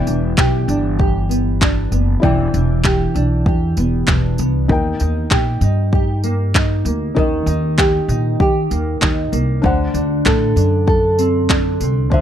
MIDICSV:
0, 0, Header, 1, 5, 480
1, 0, Start_track
1, 0, Tempo, 617284
1, 1731, Time_signature, 4, 2, 24, 8
1, 9495, End_track
2, 0, Start_track
2, 0, Title_t, "Felt piano"
2, 0, Program_c, 0, 0
2, 0, Control_c, 0, 64, 127
2, 0, Note_on_c, 0, 64, 77
2, 0, Note_on_c, 0, 74, 72
2, 0, Note_on_c, 0, 79, 87
2, 1686, Note_off_c, 0, 64, 0
2, 1694, Note_off_c, 0, 74, 0
2, 1704, Note_off_c, 0, 79, 0
2, 1709, Note_on_c, 0, 64, 76
2, 1726, Note_on_c, 0, 74, 72
2, 1743, Note_on_c, 0, 79, 86
2, 3608, Note_off_c, 0, 64, 0
2, 3616, Note_off_c, 0, 74, 0
2, 3625, Note_off_c, 0, 79, 0
2, 3642, Note_on_c, 0, 63, 73
2, 3656, Note_on_c, 0, 70, 68
2, 3660, Control_c, 0, 64, 0
2, 3669, Note_on_c, 0, 79, 84
2, 3815, Control_c, 0, 64, 127
2, 5535, Note_off_c, 0, 63, 0
2, 5542, Note_off_c, 0, 70, 0
2, 5549, Note_off_c, 0, 79, 0
2, 5557, Note_on_c, 0, 63, 76
2, 5570, Note_on_c, 0, 70, 67
2, 5584, Note_on_c, 0, 75, 80
2, 7454, Note_off_c, 0, 63, 0
2, 7461, Note_off_c, 0, 70, 0
2, 7468, Note_off_c, 0, 75, 0
2, 7479, Note_on_c, 0, 62, 82
2, 7495, Note_on_c, 0, 72, 72
2, 7501, Control_c, 0, 64, 0
2, 7509, Note_on_c, 0, 78, 89
2, 7633, Control_c, 0, 64, 127
2, 9379, Note_off_c, 0, 62, 0
2, 9387, Note_off_c, 0, 72, 0
2, 9394, Note_off_c, 0, 78, 0
2, 9409, Note_on_c, 0, 62, 76
2, 9425, Note_on_c, 0, 72, 72
2, 9438, Note_on_c, 0, 76, 72
2, 9478, Note_off_c, 0, 76, 0
2, 9495, Note_off_c, 0, 62, 0
2, 9495, Note_off_c, 0, 72, 0
2, 9495, End_track
3, 0, Start_track
3, 0, Title_t, "Nylon-string guitar"
3, 0, Program_c, 1, 24
3, 0, Note_on_c, 1, 52, 80
3, 0, Note_on_c, 1, 59, 59
3, 0, Note_on_c, 1, 67, 68
3, 50, Note_on_c, 1, 62, 62
3, 290, Note_off_c, 1, 67, 0
3, 293, Note_on_c, 1, 67, 69
3, 518, Note_off_c, 1, 62, 0
3, 527, Note_on_c, 1, 62, 61
3, 765, Note_off_c, 1, 67, 0
3, 768, Note_on_c, 1, 67, 70
3, 1002, Note_off_c, 1, 59, 0
3, 1005, Note_on_c, 1, 59, 61
3, 1239, Note_off_c, 1, 62, 0
3, 1249, Note_on_c, 1, 62, 63
3, 1480, Note_off_c, 1, 59, 0
3, 1489, Note_on_c, 1, 59, 62
3, 1725, Note_off_c, 1, 52, 0
3, 1735, Note_on_c, 1, 52, 79
3, 1968, Note_off_c, 1, 62, 0
3, 1977, Note_on_c, 1, 62, 60
3, 2206, Note_off_c, 1, 67, 0
3, 2209, Note_on_c, 1, 67, 66
3, 2435, Note_off_c, 1, 62, 0
3, 2445, Note_on_c, 1, 62, 61
3, 2688, Note_off_c, 1, 67, 0
3, 2691, Note_on_c, 1, 67, 68
3, 2922, Note_off_c, 1, 59, 0
3, 2931, Note_on_c, 1, 59, 61
3, 3162, Note_off_c, 1, 62, 0
3, 3171, Note_on_c, 1, 62, 58
3, 3403, Note_off_c, 1, 59, 0
3, 3413, Note_on_c, 1, 59, 59
3, 3652, Note_off_c, 1, 52, 0
3, 3698, Note_off_c, 1, 62, 0
3, 3699, Note_off_c, 1, 59, 0
3, 3887, Note_on_c, 1, 63, 58
3, 4128, Note_off_c, 1, 67, 0
3, 4131, Note_on_c, 1, 67, 63
3, 4356, Note_off_c, 1, 63, 0
3, 4365, Note_on_c, 1, 63, 59
3, 4598, Note_off_c, 1, 67, 0
3, 4608, Note_on_c, 1, 67, 71
3, 4850, Note_on_c, 1, 58, 60
3, 5077, Note_off_c, 1, 63, 0
3, 5086, Note_on_c, 1, 63, 60
3, 5322, Note_off_c, 1, 58, 0
3, 5332, Note_on_c, 1, 58, 56
3, 5570, Note_on_c, 1, 51, 81
3, 5802, Note_off_c, 1, 63, 0
3, 5811, Note_on_c, 1, 63, 62
3, 6044, Note_off_c, 1, 67, 0
3, 6054, Note_on_c, 1, 67, 65
3, 6284, Note_off_c, 1, 63, 0
3, 6294, Note_on_c, 1, 63, 63
3, 6521, Note_off_c, 1, 67, 0
3, 6531, Note_on_c, 1, 67, 69
3, 6761, Note_off_c, 1, 58, 0
3, 6770, Note_on_c, 1, 58, 61
3, 6994, Note_off_c, 1, 63, 0
3, 7004, Note_on_c, 1, 63, 61
3, 7239, Note_off_c, 1, 58, 0
3, 7249, Note_on_c, 1, 58, 62
3, 7488, Note_off_c, 1, 51, 0
3, 7491, Note_on_c, 1, 50, 83
3, 7536, Note_off_c, 1, 63, 0
3, 7539, Note_off_c, 1, 58, 0
3, 7540, Note_off_c, 1, 67, 0
3, 7730, Note_on_c, 1, 62, 61
3, 7975, Note_on_c, 1, 69, 69
3, 8212, Note_off_c, 1, 62, 0
3, 8215, Note_on_c, 1, 62, 61
3, 8445, Note_off_c, 1, 69, 0
3, 8454, Note_on_c, 1, 69, 69
3, 8698, Note_on_c, 1, 60, 62
3, 8936, Note_off_c, 1, 62, 0
3, 8939, Note_on_c, 1, 62, 64
3, 9178, Note_off_c, 1, 60, 0
3, 9187, Note_on_c, 1, 60, 63
3, 9418, Note_off_c, 1, 50, 0
3, 9421, Note_on_c, 1, 50, 83
3, 9495, Note_off_c, 1, 50, 0
3, 9495, Note_off_c, 1, 60, 0
3, 9495, Note_off_c, 1, 62, 0
3, 9495, Note_off_c, 1, 69, 0
3, 9495, End_track
4, 0, Start_track
4, 0, Title_t, "Upright bass"
4, 0, Program_c, 2, 32
4, 54, Note_on_c, 2, 28, 91
4, 250, Note_off_c, 2, 28, 0
4, 291, Note_on_c, 2, 35, 89
4, 488, Note_off_c, 2, 35, 0
4, 529, Note_on_c, 2, 31, 91
4, 1459, Note_off_c, 2, 31, 0
4, 1491, Note_on_c, 2, 30, 85
4, 1688, Note_off_c, 2, 30, 0
4, 1733, Note_on_c, 2, 28, 106
4, 1929, Note_off_c, 2, 28, 0
4, 1974, Note_on_c, 2, 28, 98
4, 2366, Note_off_c, 2, 28, 0
4, 2453, Note_on_c, 2, 35, 90
4, 2649, Note_off_c, 2, 35, 0
4, 2689, Note_on_c, 2, 40, 93
4, 2886, Note_off_c, 2, 40, 0
4, 2933, Note_on_c, 2, 28, 91
4, 3129, Note_off_c, 2, 28, 0
4, 3172, Note_on_c, 2, 28, 87
4, 3368, Note_off_c, 2, 28, 0
4, 3415, Note_on_c, 2, 36, 82
4, 3610, Note_off_c, 2, 36, 0
4, 3649, Note_on_c, 2, 39, 109
4, 3846, Note_off_c, 2, 39, 0
4, 3892, Note_on_c, 2, 39, 93
4, 4088, Note_off_c, 2, 39, 0
4, 4129, Note_on_c, 2, 46, 86
4, 4326, Note_off_c, 2, 46, 0
4, 4362, Note_on_c, 2, 43, 91
4, 5295, Note_off_c, 2, 43, 0
4, 5325, Note_on_c, 2, 38, 86
4, 5524, Note_off_c, 2, 38, 0
4, 5571, Note_on_c, 2, 39, 94
4, 5768, Note_off_c, 2, 39, 0
4, 5803, Note_on_c, 2, 39, 92
4, 6200, Note_off_c, 2, 39, 0
4, 6286, Note_on_c, 2, 46, 92
4, 6485, Note_off_c, 2, 46, 0
4, 6530, Note_on_c, 2, 51, 86
4, 6728, Note_off_c, 2, 51, 0
4, 6773, Note_on_c, 2, 39, 89
4, 6969, Note_off_c, 2, 39, 0
4, 7015, Note_on_c, 2, 39, 98
4, 7210, Note_off_c, 2, 39, 0
4, 7252, Note_on_c, 2, 36, 85
4, 7449, Note_off_c, 2, 36, 0
4, 7494, Note_on_c, 2, 38, 102
4, 7690, Note_off_c, 2, 38, 0
4, 7729, Note_on_c, 2, 38, 85
4, 7927, Note_off_c, 2, 38, 0
4, 7976, Note_on_c, 2, 45, 99
4, 8172, Note_off_c, 2, 45, 0
4, 8211, Note_on_c, 2, 42, 89
4, 9144, Note_off_c, 2, 42, 0
4, 9177, Note_on_c, 2, 36, 82
4, 9418, Note_off_c, 2, 36, 0
4, 9418, Note_on_c, 2, 38, 101
4, 9495, Note_off_c, 2, 38, 0
4, 9495, End_track
5, 0, Start_track
5, 0, Title_t, "Drums"
5, 54, Note_on_c, 9, 54, 56
5, 132, Note_off_c, 9, 54, 0
5, 293, Note_on_c, 9, 36, 108
5, 294, Note_on_c, 9, 39, 117
5, 371, Note_off_c, 9, 36, 0
5, 372, Note_off_c, 9, 39, 0
5, 534, Note_on_c, 9, 54, 57
5, 612, Note_off_c, 9, 54, 0
5, 774, Note_on_c, 9, 36, 109
5, 851, Note_off_c, 9, 36, 0
5, 1019, Note_on_c, 9, 54, 67
5, 1096, Note_off_c, 9, 54, 0
5, 1256, Note_on_c, 9, 36, 100
5, 1258, Note_on_c, 9, 39, 112
5, 1334, Note_off_c, 9, 36, 0
5, 1336, Note_off_c, 9, 39, 0
5, 1494, Note_on_c, 9, 54, 64
5, 1571, Note_off_c, 9, 54, 0
5, 1735, Note_on_c, 9, 36, 107
5, 1813, Note_off_c, 9, 36, 0
5, 1975, Note_on_c, 9, 54, 57
5, 2052, Note_off_c, 9, 54, 0
5, 2211, Note_on_c, 9, 39, 111
5, 2213, Note_on_c, 9, 36, 107
5, 2289, Note_off_c, 9, 39, 0
5, 2290, Note_off_c, 9, 36, 0
5, 2454, Note_on_c, 9, 54, 55
5, 2532, Note_off_c, 9, 54, 0
5, 2691, Note_on_c, 9, 36, 109
5, 2769, Note_off_c, 9, 36, 0
5, 2931, Note_on_c, 9, 54, 62
5, 3008, Note_off_c, 9, 54, 0
5, 3169, Note_on_c, 9, 39, 112
5, 3172, Note_on_c, 9, 36, 102
5, 3246, Note_off_c, 9, 39, 0
5, 3249, Note_off_c, 9, 36, 0
5, 3408, Note_on_c, 9, 54, 67
5, 3486, Note_off_c, 9, 54, 0
5, 3650, Note_on_c, 9, 36, 99
5, 3728, Note_off_c, 9, 36, 0
5, 3886, Note_on_c, 9, 54, 60
5, 3964, Note_off_c, 9, 54, 0
5, 4128, Note_on_c, 9, 39, 112
5, 4129, Note_on_c, 9, 36, 104
5, 4206, Note_off_c, 9, 39, 0
5, 4207, Note_off_c, 9, 36, 0
5, 4365, Note_on_c, 9, 54, 59
5, 4443, Note_off_c, 9, 54, 0
5, 4609, Note_on_c, 9, 36, 108
5, 4687, Note_off_c, 9, 36, 0
5, 4849, Note_on_c, 9, 54, 68
5, 4926, Note_off_c, 9, 54, 0
5, 5092, Note_on_c, 9, 36, 99
5, 5094, Note_on_c, 9, 39, 113
5, 5170, Note_off_c, 9, 36, 0
5, 5172, Note_off_c, 9, 39, 0
5, 5331, Note_on_c, 9, 54, 66
5, 5409, Note_off_c, 9, 54, 0
5, 5571, Note_on_c, 9, 36, 96
5, 5649, Note_off_c, 9, 36, 0
5, 5809, Note_on_c, 9, 54, 58
5, 5886, Note_off_c, 9, 54, 0
5, 6051, Note_on_c, 9, 36, 106
5, 6054, Note_on_c, 9, 39, 117
5, 6129, Note_off_c, 9, 36, 0
5, 6131, Note_off_c, 9, 39, 0
5, 6293, Note_on_c, 9, 54, 57
5, 6371, Note_off_c, 9, 54, 0
5, 6532, Note_on_c, 9, 36, 113
5, 6610, Note_off_c, 9, 36, 0
5, 6774, Note_on_c, 9, 54, 68
5, 6852, Note_off_c, 9, 54, 0
5, 7013, Note_on_c, 9, 39, 110
5, 7015, Note_on_c, 9, 36, 100
5, 7091, Note_off_c, 9, 39, 0
5, 7092, Note_off_c, 9, 36, 0
5, 7254, Note_on_c, 9, 54, 63
5, 7332, Note_off_c, 9, 54, 0
5, 7495, Note_on_c, 9, 36, 96
5, 7573, Note_off_c, 9, 36, 0
5, 7733, Note_on_c, 9, 54, 57
5, 7811, Note_off_c, 9, 54, 0
5, 7976, Note_on_c, 9, 36, 110
5, 7976, Note_on_c, 9, 39, 119
5, 8054, Note_off_c, 9, 36, 0
5, 8054, Note_off_c, 9, 39, 0
5, 8218, Note_on_c, 9, 54, 58
5, 8296, Note_off_c, 9, 54, 0
5, 8457, Note_on_c, 9, 36, 111
5, 8535, Note_off_c, 9, 36, 0
5, 8698, Note_on_c, 9, 54, 66
5, 8776, Note_off_c, 9, 54, 0
5, 8940, Note_on_c, 9, 36, 96
5, 8941, Note_on_c, 9, 39, 114
5, 9018, Note_off_c, 9, 36, 0
5, 9018, Note_off_c, 9, 39, 0
5, 9181, Note_on_c, 9, 54, 63
5, 9258, Note_off_c, 9, 54, 0
5, 9421, Note_on_c, 9, 36, 98
5, 9495, Note_off_c, 9, 36, 0
5, 9495, End_track
0, 0, End_of_file